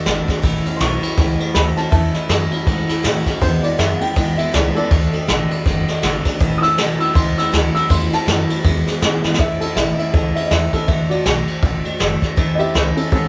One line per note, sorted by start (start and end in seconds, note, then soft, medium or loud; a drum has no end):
0.05 0.28 G#1 medium
0.05 0.28 D3 medium
0.05 0.27 D3 medium
0.05 0.28 A3 loud
0.05 0.27 B3 medium
0.05 0.27 D4 loud
0.05 0.25 F#4 loud
0.05 snare loud
0.05 ride medium
0.27 0.42 D3 medium
0.27 0.42 A3 medium
0.27 0.43 B3 medium
0.27 0.43 D4 medium
0.27 0.43 F#4 medium
0.27 kick medium
0.27 snare soft
0.27 ride medium
0.42 0.65 A1 medium
0.42 0.65 A2 medium
0.42 0.64 A2 medium
0.42 0.65 E3 medium
0.42 0.64 E3 medium
0.42 0.65 A3 medium
0.42 0.64 C#4 loud
0.42 0.62 E4 loud
0.42 kick loud
0.42 ride medium
0.64 0.80 A2 medium
0.64 0.80 E3 medium
0.64 0.79 A3 medium
0.64 0.79 C#4 medium
0.64 0.80 E4 medium
0.64 muted upright bass stroke medium
0.64 ride medium
0.77 1.02 B1 medium
0.77 1.02 A2 medium
0.77 1.02 E3 medium
0.77 1.03 A3 medium
0.77 1.01 C#4 medium
0.77 0.80 C6 medium
0.77 snare loud
0.77 ride medium
0.81 1.01 A2 medium
0.81 1.01 F#3 medium
0.81 1.00 E4 loud
0.81 1.53 C#6 loud
1.01 1.17 A2 medium
1.01 1.17 F#3 medium
1.01 1.16 A3 soft
1.01 1.17 C#4 medium
1.01 1.17 E4 medium
1.01 muted upright bass stroke medium
1.01 ride medium
1.16 1.39 C#2 medium
1.16 1.38 A2 medium
1.16 1.39 E3 medium
1.16 1.38 E3 loud
1.16 1.40 A3 medium
1.16 1.39 C#4 medium
1.16 1.38 E4 medium
1.16 kick loud
1.16 snare soft
1.16 ride medium
1.39 1.54 A2 medium
1.39 1.54 E3 medium
1.39 1.54 A3 soft
1.39 1.54 C#4 medium
1.39 1.55 E4 medium
1.39 ride medium
1.54 1.76 D2 loud
1.54 1.77 A2 medium
1.54 1.75 A2 medium
1.54 1.77 E3 medium
1.54 1.75 F#3 medium
1.54 1.77 A3 medium
1.54 1.76 C#4 medium
1.54 1.74 E4 medium
1.54 1.76 B5 medium
1.54 snare loud
1.54 ride medium
1.76 1.91 A2 medium
1.76 1.91 F#3 medium
1.76 1.91 A3 soft
1.76 1.91 C#4 medium
1.76 1.92 E4 medium
1.76 1.90 A5 medium
1.76 muted upright bass stroke medium
1.76 snare soft
1.76 ride medium
1.91 2.14 E2 medium
1.91 2.14 A2 medium
1.91 2.12 A2 medium
1.91 2.14 E3 medium
1.91 2.13 E3 loud
1.91 2.14 A3 medium
1.91 2.13 C#4 medium
1.91 2.11 E4 medium
1.91 3.00 E5 medium
1.91 3.01 A5 medium
1.91 kick loud
1.91 ride medium
2.13 2.28 A2 medium
2.13 2.28 E3 medium
2.13 2.29 A3 soft
2.13 2.29 C#4 soft
2.13 2.29 E4 medium
2.13 muted upright bass stroke medium
2.13 snare soft
2.13 ride medium
2.28 2.51 F#2 loud
2.28 2.51 A2 medium
2.28 2.50 A2 medium
2.28 2.52 E3 medium
2.28 2.50 F#3 loud
2.28 2.52 A3 medium
2.28 2.51 C#4 medium
2.28 2.49 E4 medium
2.28 snare loud
2.28 ride medium
2.51 2.66 A2 medium
2.51 2.66 F#3 medium
2.51 2.65 A3 soft
2.51 2.66 C#4 medium
2.51 2.66 E4 medium
2.51 ride medium
2.65 2.89 G#2 medium
2.65 2.87 A2 medium
2.65 2.88 E3 medium
2.65 2.87 E3 loud
2.65 2.89 A3 medium
2.65 2.89 C#4 medium
2.65 2.87 E4 medium
2.65 kick loud
2.65 ride medium
2.88 3.03 A2 medium
2.88 3.03 E3 medium
2.88 3.03 A3 soft
2.88 3.03 C#4 medium
2.88 3.04 E4 medium
2.88 muted upright bass stroke medium
2.88 snare soft
2.88 ride medium
3.03 3.26 A2 loud
3.03 3.25 A2 medium
3.03 3.26 E3 medium
3.03 3.25 F#3 medium
3.03 3.27 A3 loud
3.03 3.26 C#4 medium
3.03 3.24 E4 loud
3.03 snare loud
3.03 ride medium
3.25 3.40 A2 medium
3.25 3.41 F#3 medium
3.25 3.42 A3 soft
3.25 3.42 C#4 medium
3.25 3.41 E4 medium
3.25 kick medium
3.25 snare soft
3.25 ride medium
3.40 3.63 E2 medium
3.40 3.62 E2 medium
3.40 3.64 B2 medium
3.40 3.62 B2 medium
3.40 3.64 E3 medium
3.40 3.64 G#3 medium
3.40 3.62 B3 medium
3.40 3.62 E4 medium
3.40 3.63 C5 loud
3.40 kick loud
3.40 ride medium
3.63 3.78 E2 medium
3.63 3.78 B2 medium
3.63 3.78 E3 soft
3.63 3.78 G#3 soft
3.63 3.78 B3 medium
3.63 3.79 E4 medium
3.63 3.78 D5 loud
3.63 ride medium
3.78 4.01 E2 medium
3.78 3.99 E2 medium
3.78 4.00 F#2 loud
3.78 4.01 B2 medium
3.78 3.99 C#3 loud
3.78 4.01 E3 medium
3.78 4.01 G#3 medium
3.78 4.00 B3 medium
3.78 3.99 E4 medium
3.78 4.00 E5 medium
3.78 snare loud
3.78 ride loud
3.97 4.16 E4 medium
3.97 3.99 F#5 medium
4.01 4.15 E2 medium
4.01 4.15 C#3 medium
4.01 4.14 E3 soft
4.01 4.15 G#3 soft
4.01 4.16 B3 medium
4.01 4.37 G5 loud
4.01 muted upright bass stroke medium
4.01 ride medium
4.15 4.36 E2 medium
4.15 4.38 G#2 loud
4.15 4.36 B2 medium
4.15 4.38 E3 medium
4.15 4.39 G#3 medium
4.15 4.38 B3 medium
4.15 4.37 E4 medium
4.15 kick loud
4.15 snare soft
4.15 ride medium
4.37 4.52 E2 medium
4.37 4.52 B2 medium
4.37 4.52 E3 soft
4.37 4.53 G#3 medium
4.37 4.53 B3 medium
4.37 4.53 E4 medium
4.37 4.53 E5 medium
4.37 muted upright bass stroke medium
4.37 ride medium
4.52 4.75 C#2 medium
4.52 4.75 E2 medium
4.52 4.74 E2 medium
4.52 4.75 B2 medium
4.52 4.74 C#3 loud
4.52 4.76 E3 medium
4.52 4.76 G#3 medium
4.52 4.75 B3 medium
4.52 4.73 E4 loud
4.52 4.75 D5 medium
4.52 snare loud
4.52 ride medium
4.75 4.90 E2 medium
4.75 4.90 C#3 medium
4.75 4.90 E3 medium
4.75 4.91 G#3 soft
4.75 4.91 B3 medium
4.75 4.90 E4 medium
4.75 5.84 A4 medium
4.75 5.85 D5 loud
4.75 muted upright bass stroke medium
4.75 ride medium
4.90 5.13 D2 medium
4.90 5.13 D3 medium
4.90 5.11 D3 medium
4.90 5.13 A3 medium
4.90 5.11 A3 loud
4.90 5.12 D4 medium
4.90 5.10 F#4 medium
4.90 kick loud
4.90 ride medium
5.11 5.27 D3 medium
5.11 5.27 A3 medium
5.11 5.27 A3 soft
5.11 5.28 D4 medium
5.11 5.28 F#4 medium
5.11 ride medium
5.27 5.50 A1 loud
5.27 5.50 D3 loud
5.27 5.48 D3 medium
5.27 5.51 A3 loud
5.27 5.49 B3 loud
5.27 5.50 D4 medium
5.27 5.48 F#4 loud
5.27 snare loud
5.27 ride medium
5.49 5.64 D3 medium
5.49 5.65 A3 medium
5.49 5.64 B3 medium
5.49 5.66 D4 medium
5.49 5.65 F#4 medium
5.49 muted upright bass stroke medium
5.49 ride medium
5.64 5.87 F#1 loud
5.64 5.87 D3 medium
5.64 5.86 D3 medium
5.64 5.88 A3 medium
5.64 5.86 A3 loud
5.64 5.88 D4 medium
5.64 5.86 F#4 medium
5.64 kick loud
5.64 snare soft
5.64 ride medium
5.87 6.01 D3 medium
5.87 6.02 A3 medium
5.87 6.03 D4 medium
5.87 6.03 F#4 medium
5.87 snare soft
5.87 ride medium
6.02 6.25 G#1 loud
6.02 6.25 D3 loud
6.02 6.23 D3 medium
6.02 6.25 A3 loud
6.02 6.23 B3 medium
6.02 6.25 D4 loud
6.02 6.23 F#4 loud
6.02 snare loud
6.02 ride medium
6.25 6.39 D3 medium
6.25 6.39 A3 soft
6.25 6.39 B3 medium
6.25 6.41 D4 medium
6.25 6.40 F#4 medium
6.25 kick medium
6.25 snare soft
6.25 ride medium
6.39 6.62 A1 medium
6.39 6.62 A2 medium
6.39 6.61 A2 medium
6.39 6.62 E3 loud
6.39 6.61 E3 medium
6.39 6.63 A3 loud
6.39 6.62 C#4 loud
6.39 6.60 E4 loud
6.39 kick loud
6.39 ride medium
6.58 6.77 E4 medium
6.58 6.60 D#6 medium
6.62 6.77 A2 medium
6.62 6.77 E3 medium
6.62 6.77 A3 medium
6.62 6.77 C#4 soft
6.62 6.77 E6 loud
6.62 snare soft
6.62 ride medium
6.77 6.99 B1 loud
6.77 7.00 A2 medium
6.77 6.98 A2 medium
6.77 7.00 E3 medium
6.77 6.98 F#3 loud
6.77 7.00 A3 medium
6.77 6.99 C#4 medium
6.77 6.97 E4 loud
6.77 snare loud
6.77 ride medium
6.98 7.13 A2 medium
6.98 7.14 F#3 medium
6.98 7.14 A3 soft
6.98 7.15 C#4 medium
6.98 7.14 E4 medium
6.98 7.15 E6 loud
6.98 ride medium
7.14 7.37 C#2 loud
7.14 7.35 A2 medium
7.14 7.37 E3 medium
7.14 7.35 E3 loud
7.14 7.37 A3 medium
7.14 7.37 C#4 medium
7.14 7.35 E4 medium
7.14 7.37 C6 medium
7.14 kick loud
7.14 ride medium
7.36 7.51 A2 medium
7.36 7.51 E3 medium
7.36 7.51 A3 medium
7.36 7.52 C#4 medium
7.36 7.52 E4 medium
7.36 7.53 E6 medium
7.36 muted upright bass stroke medium
7.36 snare soft
7.36 ride medium
7.51 7.74 D2 loud
7.51 7.74 A2 medium
7.51 7.72 A2 medium
7.51 7.74 E3 medium
7.51 7.73 F#3 loud
7.51 7.75 A3 medium
7.51 7.74 C#4 loud
7.51 7.72 E4 medium
7.51 snare loud
7.51 ride medium
7.74 7.88 A2 medium
7.74 7.88 F#3 medium
7.74 7.89 A3 soft
7.74 7.89 C#4 medium
7.74 7.89 E4 medium
7.74 7.89 E6 loud
7.74 snare soft
7.74 ride medium
7.89 8.11 E2 medium
7.89 8.11 A2 medium
7.89 8.10 A2 medium
7.89 8.12 E3 medium
7.89 8.10 E3 medium
7.89 8.12 A3 medium
7.89 8.11 C#4 medium
7.89 8.09 E4 loud
7.89 8.12 C6 medium
7.89 kick loud
7.89 ride loud
8.10 8.26 A2 medium
8.10 8.26 E3 medium
8.10 8.26 A3 soft
8.10 8.26 C#4 medium
8.10 8.26 E4 medium
8.10 8.64 A5 loud
8.10 muted upright bass stroke medium
8.10 snare soft
8.10 ride medium
8.25 8.49 F#2 loud
8.25 8.49 A2 medium
8.25 8.47 A2 loud
8.25 8.49 E3 medium
8.25 8.48 F#3 loud
8.25 8.49 A3 medium
8.25 8.48 C#4 medium
8.25 8.46 E4 medium
8.25 snare loud
8.25 ride medium
8.47 8.63 A2 medium
8.47 8.64 F#3 medium
8.47 8.63 A3 soft
8.47 8.64 C#4 soft
8.47 8.64 E4 medium
8.47 ride medium
8.62 8.86 E2 medium
8.62 8.85 E2 medium
8.62 8.85 B2 loud
8.62 8.86 E3 medium
8.62 8.86 G#3 medium
8.62 8.86 B3 medium
8.62 8.85 E4 medium
8.62 kick loud
8.62 ride medium
8.86 9.00 E2 medium
8.86 9.01 B2 medium
8.86 9.01 E3 medium
8.86 9.01 G#3 medium
8.86 9.02 B3 medium
8.86 9.01 E4 medium
8.86 muted upright bass stroke medium
8.86 snare soft
8.86 ride medium
9.01 9.24 E2 medium
9.01 9.22 E2 medium
9.01 9.24 G#2 medium
9.01 9.24 B2 loud
9.01 9.22 C#3 loud
9.01 9.24 E3 loud
9.01 9.24 G#3 loud
9.01 9.24 B3 loud
9.01 9.22 E4 loud
9.01 snare loud
9.01 ride medium
9.24 9.38 E2 medium
9.24 9.38 C#3 medium
9.24 9.38 E3 medium
9.24 9.39 G#3 medium
9.24 9.40 B3 medium
9.24 9.39 E4 medium
9.24 muted upright bass stroke medium
9.24 snare medium
9.34 snare medium
9.39 9.61 A2 medium
9.39 9.60 A2 medium
9.39 9.62 E3 medium
9.39 9.62 A3 medium
9.39 9.61 C#4 medium
9.39 9.59 E4 medium
9.39 9.61 E5 loud
9.39 kick loud
9.39 ride medium
9.61 9.76 A3 soft
9.61 9.76 C#4 medium
9.61 9.76 E4 medium
9.61 9.76 A4 medium
9.61 ride medium
9.76 9.98 A1 medium
9.76 9.98 A2 medium
9.76 9.99 E3 medium
9.76 9.99 A3 medium
9.76 9.98 C#4 medium
9.76 9.96 E4 medium
9.76 9.97 E5 medium
9.76 snare loud
9.76 ride medium
9.94 10.13 E4 medium
9.94 9.96 D#5 medium
9.98 10.12 A3 soft
9.98 10.13 C#4 soft
9.98 10.13 E5 medium
9.98 muted upright bass stroke medium
9.98 ride medium
10.12 10.35 C#2 medium
10.12 10.35 E3 medium
10.12 10.36 A3 medium
10.12 10.35 C#4 medium
10.12 10.33 E4 medium
10.12 10.35 A4 medium
10.12 kick loud
10.12 ride loud
10.35 10.50 A3 soft
10.35 10.51 C#4 soft
10.35 10.50 E4 medium
10.35 10.49 E5 medium
10.35 ride medium
10.46 10.73 A2 medium
10.46 10.49 D#5 medium
10.51 10.73 E2 loud
10.51 10.73 E3 medium
10.51 10.73 A3 medium
10.51 10.72 C#4 medium
10.51 10.71 E4 medium
10.51 10.72 E5 medium
10.51 snare loud
10.51 ride medium
10.72 10.87 A3 soft
10.72 10.88 C#4 medium
10.72 10.88 E4 medium
10.72 10.88 A4 medium
10.72 kick medium
10.72 ride medium
10.87 11.10 D3 medium
10.87 11.10 A3 medium
10.87 11.10 D4 medium
10.87 11.08 F#4 medium
10.87 11.09 E5 medium
10.87 kick loud
10.87 ride medium
11.09 11.24 A3 soft
11.09 11.24 D4 medium
11.09 11.25 F#4 medium
11.09 11.45 F#4 medium
11.09 11.46 D5 medium
11.09 muted upright bass stroke soft
11.09 ride medium
11.24 11.47 B1 loud
11.24 11.47 D3 medium
11.24 11.47 A3 medium
11.24 11.47 D4 medium
11.24 11.45 F#4 medium
11.24 snare loud
11.24 ride medium
11.46 11.62 A3 soft
11.46 11.62 D4 soft
11.46 11.62 F#4 medium
11.46 muted upright bass stroke medium
11.46 ride medium
11.61 11.84 A1 medium
11.61 11.84 D3 medium
11.61 11.85 A3 medium
11.61 11.84 D4 medium
11.61 11.82 F#4 medium
11.61 kick loud
11.61 ride medium
11.83 11.98 A3 soft
11.83 11.99 D4 medium
11.83 11.99 F#4 medium
11.83 ride medium
11.99 12.22 F#1 loud
11.99 12.22 D3 medium
11.99 12.22 A3 loud
11.99 12.21 D4 loud
11.99 12.19 F#4 loud
11.99 snare loud
11.99 ride medium
12.21 12.36 A3 medium
12.21 12.37 D4 medium
12.21 12.37 F#4 medium
12.21 kick medium
12.21 snare soft
12.21 ride medium
12.36 12.59 A2 medium
12.36 12.59 E3 medium
12.36 12.60 A3 loud
12.36 12.59 C#4 loud
12.36 12.57 E4 loud
12.36 kick loud
12.36 ride medium
12.55 12.74 E4 medium
12.55 12.73 G4 medium
12.55 12.57 D#5 medium
12.59 12.74 A3 soft
12.59 12.74 C#4 medium
12.59 12.74 E5 loud
12.59 muted upright bass stroke soft
12.59 ride medium
12.74 12.96 C#2 loud
12.74 12.96 A2 medium
12.74 12.97 E3 medium
12.74 12.97 A3 medium
12.74 12.96 C#4 medium
12.74 12.95 E4 medium
12.74 12.94 E4 medium
12.74 12.97 C5 medium
12.74 snare loud
12.74 ride medium
12.95 13.10 A3 soft
12.95 13.11 C#4 medium
12.95 13.11 E4 medium
12.95 13.11 A4 medium
12.95 ride medium
13.10 13.28 G#2 medium
13.10 13.28 E3 medium
13.10 13.28 A3 medium
13.10 13.28 C#4 medium
13.10 13.28 E4 medium
13.10 13.28 A4 loud
13.10 kick loud
13.10 ride medium